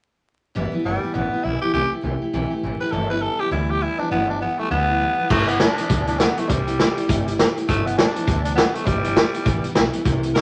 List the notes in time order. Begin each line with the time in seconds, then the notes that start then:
0.55 G1 G2 D3 E3 G3 B3 E4
0.73 E3 G3 B3 E4, muted upright bass stroke
0.84 G1 E3 G3 B3 E4
1.03 E3 G3 B3 E4, muted upright bass stroke
1.14 A1 G2 D3 E3 G3 B3 E4
1.33 E3 G3 B3 E4, muted upright bass stroke
1.44 B1 E3 G3 B3 E4
1.61 E3 G3 B3 E4 G4
1.73 C2 C3 E3 A3 E4 G4
1.91 A3 E4 G4, muted upright bass stroke
2.02 C2 E3 A3 E4 G4
2.21 A3 E4 G4, muted upright bass stroke
2.33 B1 C3 E3 A3 E4 G4
2.50 A3 E4 G4
2.63 A1 E3 A3 E4 G4
2.80 A3 E4 G4 B4, muted upright bass stroke
2.92 G1 G2 D3 E3 G3 B3 E4 A4
3.10 E3 G3 B3 E4 B4
3.22 E3 G3 B3 E4 A4
3.39 E3 G3 B3 E4 G4, muted upright bass stroke
3.51 D2 G2 D3 E3 G3 B3 E4
3.69 E3 G3 B3 E4 G4
3.81 E3 G3 B3 E4
3.99 E3 G3 B3 D4 E4, muted upright bass stroke
4.11 G1 G2 D3 E3 G3 B3 E4
4.29 E3 G3 B3 D4 E4
4.41 E3 G3 B3 E4
4.58 E3 G3 A3 B3 E4, muted upright bass stroke
4.70 D2 G2 D3 E3 G3 B3 E4
4.88 E3 G3 B3 E4
5.00 E3 G3 B3 E4
5.18 E3 G3 B3 E4
5.30 G1 G2 D3 E3 G3 A3 B3 E4, kick, crash
5.47 E3 G3 B3 E4, closed hi-hat
5.59 E3 G3 D4 E4, snare, closed hi-hat
5.78 E3 G3 B3 E4, muted upright bass stroke, closed hi-hat
5.89 D2 G2 D3 E3 G3 B3 E4, kick, closed hi-hat
6.07 E3 G3 B3 D4 E4, closed hi-hat
6.17 E3 G3 B3 E4, snare, closed hi-hat
6.36 E3 G3 A3 B3 E4, closed hi-hat
6.48 C2 C3 E3 G3 A3 E4 G4, kick, closed hi-hat
6.67 A3 E4 G4, closed hi-hat
6.77 E3 A3 E4 G4, snare, closed hi-hat
6.95 A3 E4 G4, closed hi-hat
7.08 G1 C3 E3 A3 E4 G4, kick, closed hi-hat
7.26 A3 E4 G4, closed hi-hat
7.38 E3 A3 E4 G4, snare, closed hi-hat
7.56 A3 E4 G4, muted upright bass stroke, closed hi-hat
7.68 G1 G2 D3 E3 G3 A3 B3 E4, kick, closed hi-hat
7.85 E3 G3 B3 E4, closed hi-hat
7.96 E3 G3 B3 D4 E4, snare, closed hi-hat
8.15 E3 G3 B3 E4, muted upright bass stroke, closed hi-hat
8.26 D2 G2 D3 E3 G3 B3 E4, kick, closed hi-hat
8.43 E3 G3 B3 D4 E4, closed hi-hat
8.55 E3 G3 B3 E4, snare, closed hi-hat
8.74 E3 G3 A3 B3 E4, closed hi-hat
8.84 G1 G2 D3 E3 G3 B3 E4, kick, closed hi-hat
9.04 E3 G3 B3 E4, closed hi-hat
9.15 E3 G3 E4, snare, closed hi-hat
9.32 E3 G3 B3 E4, muted upright bass stroke, closed hi-hat
9.44 A1 G2 D3 E3 G3 B3 E4, kick, closed hi-hat
9.64 E3 G3 B3 E4, muted upright bass stroke, closed hi-hat
9.75 B1 E3 G3 E4, snare, closed hi-hat
9.93 E3 G3 B3 E4, muted upright bass stroke, closed hi-hat
10.05 C2 C3 E3 A3 E4 G4, kick, closed hi-hat
10.23 A3 E4 G4, closed hi-hat
10.34 E3 E4 A#4, snare, closed hi-hat